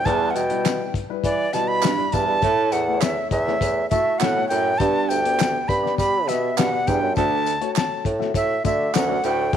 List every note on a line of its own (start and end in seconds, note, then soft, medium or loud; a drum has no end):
0.05 0.47 E2 medium
0.05 0.30 E2 loud
0.05 0.41 G3 medium
0.05 0.41 E4 medium
0.05 0.41 B4 medium
0.05 0.32 A5 loud
0.05 kick loud
0.05 closed hi-hat medium
0.05 tambourine soft
0.31 0.36 F#5 medium
0.35 0.84 B2 medium
0.35 0.94 G5 medium
0.35 closed hi-hat medium
0.35 tambourine medium
0.50 0.97 G3 medium
0.50 0.97 E4 medium
0.50 0.96 B4 medium
0.50 closed hi-hat medium
0.65 snare loud
0.65 clap medium
0.65 closed hi-hat medium
0.65 tambourine medium
0.94 kick medium
0.94 closed hi-hat medium
1.09 1.44 G3 medium
1.09 1.44 E4 medium
1.09 1.44 B4 medium
1.24 1.48 E3 medium
1.24 1.55 D5 medium
1.24 kick medium
1.24 closed hi-hat medium
1.24 tambourine soft
1.53 1.90 B2 medium
1.53 1.88 G3 medium
1.53 1.88 E4 medium
1.53 1.88 B4 medium
1.53 1.69 A5 medium
1.53 snare soft
1.53 closed hi-hat medium
1.53 tambourine soft
1.68 2.15 B5 loud
1.82 2.07 G2 medium
1.82 snare loud
1.82 clap loud
1.82 closed hi-hat medium
1.82 tambourine loud
1.97 2.33 G3 medium
1.97 2.32 E4 medium
1.97 2.33 D5 medium
2.12 2.36 E2 medium
2.12 2.26 G2 medium
2.12 2.74 A5 loud
2.12 kick medium
2.12 closed hi-hat medium
2.12 tambourine soft
2.27 2.40 G2 medium
2.42 2.84 A2 medium
2.42 2.67 A2 medium
2.42 2.77 A3 medium
2.42 2.77 E4 medium
2.42 2.77 C#5 medium
2.42 kick loud
2.42 closed hi-hat medium
2.42 tambourine soft
2.72 3.21 E2 medium
2.72 3.02 F#5 medium
2.72 closed hi-hat medium
2.72 tambourine medium
2.88 3.34 A3 medium
2.88 3.33 E4 medium
2.88 2.94 B4 medium
2.95 3.37 C#5 medium
3.00 3.30 E5 medium
3.00 snare loud
3.00 clap medium
3.00 closed hi-hat medium
3.00 tambourine medium
3.31 3.56 E2 medium
3.31 3.86 E5 medium
3.31 kick medium
3.31 closed hi-hat medium
3.31 tambourine soft
3.48 3.82 A3 medium
3.48 3.82 E4 medium
3.48 3.82 C#5 medium
3.48 snare soft
3.61 3.85 E2 medium
3.61 kick medium
3.61 closed hi-hat medium
3.61 tambourine medium
3.90 4.16 A3 medium
3.90 4.26 A3 medium
3.90 4.26 E4 medium
3.90 4.26 F#4 medium
3.90 4.20 E5 medium
3.90 kick medium
3.90 closed hi-hat medium
3.90 tambourine soft
4.19 4.45 A2 medium
4.19 4.44 B2 medium
4.19 4.48 F#5 medium
4.19 snare loud
4.19 clap loud
4.19 closed hi-hat medium
4.19 tambourine medium
4.36 4.70 A3 medium
4.36 4.71 E4 medium
4.36 4.71 C#5 medium
4.48 4.75 F#2 medium
4.48 4.74 A2 medium
4.48 4.80 G5 medium
4.48 closed hi-hat medium
4.48 tambourine soft
4.78 5.04 G2 medium
4.78 5.22 G2 medium
4.78 5.14 B3 medium
4.78 5.14 G4 medium
4.78 5.14 D5 medium
4.78 5.10 A5 loud
4.78 kick loud
4.78 closed hi-hat medium
4.78 tambourine soft
5.09 5.58 D2 medium
5.09 5.70 G5 loud
5.09 closed hi-hat medium
5.09 tambourine medium
5.24 5.70 B3 medium
5.24 5.70 G4 medium
5.24 5.70 D5 medium
5.24 closed hi-hat medium
5.39 snare loud
5.39 clap medium
5.39 closed hi-hat medium
5.39 tambourine medium
5.68 5.93 G2 medium
5.68 5.98 B5 medium
5.68 kick medium
5.68 closed hi-hat medium
5.68 tambourine soft
5.83 6.18 B3 medium
5.83 6.18 G4 medium
5.83 6.18 D5 medium
5.83 snare soft
5.98 6.29 G3 medium
5.98 6.30 B5 medium
5.98 kick medium
5.98 closed hi-hat medium
5.98 tambourine soft
6.27 6.52 B2 medium
6.27 6.62 B3 medium
6.27 6.62 G4 medium
6.27 6.62 E5 medium
6.27 6.58 E5 medium
6.27 snare soft
6.27 closed hi-hat medium
6.27 tambourine soft
6.57 6.69 G2 medium
6.57 6.81 B2 medium
6.57 6.89 F#5 medium
6.57 snare loud
6.57 clap loud
6.57 closed hi-hat medium
6.57 tambourine loud
6.72 7.06 B3 medium
6.72 7.07 G4 medium
6.72 7.07 D5 medium
6.87 7.00 E2 medium
6.87 7.11 G2 medium
6.87 7.16 G5 medium
6.87 kick medium
6.87 closed hi-hat medium
6.87 tambourine soft
7.02 7.14 F#2 medium
7.16 7.58 D2 medium
7.16 7.41 D2 medium
7.16 7.51 A3 medium
7.16 7.51 F#4 medium
7.16 7.51 D5 medium
7.16 7.72 A5 loud
7.16 kick loud
7.16 closed hi-hat medium
7.16 tambourine soft
7.46 closed hi-hat medium
7.46 tambourine medium
7.61 8.07 A3 medium
7.61 8.07 F#4 medium
7.61 8.07 C#5 medium
7.61 closed hi-hat soft
7.76 8.04 A5 medium
7.76 snare loud
7.76 clap medium
7.76 closed hi-hat medium
7.76 tambourine medium
8.05 8.29 A2 medium
8.05 kick medium
8.05 closed hi-hat medium
8.19 8.54 A3 medium
8.19 8.54 F#4 medium
8.19 8.55 E5 medium
8.19 snare soft
8.34 8.59 A2 medium
8.34 8.63 E5 medium
8.34 kick medium
8.34 closed hi-hat medium
8.34 tambourine medium
8.64 8.89 D3 medium
8.64 8.99 A3 medium
8.64 8.99 F#4 medium
8.64 8.99 D5 medium
8.64 8.95 E5 medium
8.64 kick medium
8.64 closed hi-hat medium
8.64 tambourine soft
8.93 9.19 D2 medium
8.93 9.18 F#2 medium
8.93 9.26 F#5 medium
8.93 snare loud
8.93 clap loud
8.93 closed hi-hat medium
8.93 tambourine loud
9.09 9.44 A3 medium
9.09 9.43 F#4 medium
9.09 9.44 D5 medium
9.24 9.49 D2 medium
9.24 9.48 A2 medium
9.24 9.55 G5 medium
9.24 closed hi-hat medium
9.24 tambourine medium
9.53 9.57 E2 loud
9.53 9.57 E2 medium
9.53 9.57 B3 medium
9.53 9.57 G4 medium
9.53 9.57 E5 medium
9.53 9.57 A5 loud
9.53 kick loud
9.53 closed hi-hat medium